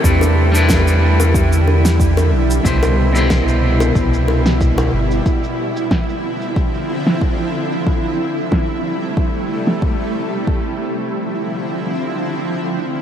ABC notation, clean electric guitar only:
X:1
M:4/4
L:1/16
Q:"Swing 16ths" 1/4=92
K:Ddor
V:1 name="Clean electric guitar"
[G,DEB]3 [G,DEB]12- [G,DEB] | [B,,EGc]3 [B,,EGc]12- [B,,EGc] | z16 | z16 |
z16 |]